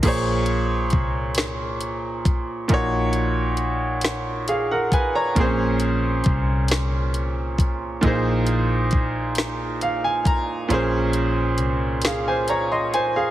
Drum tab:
CC |x-----|------|------|------|
HH |xxxxxx|xxxxxx|xxxxxx|xxxxxx|
SD |---o--|---o--|---o--|---o--|
BD |o-o--o|o----o|o-o--o|o-o--o|

CC |------|
HH |xxxxxx|
SD |---o--|
BD |------|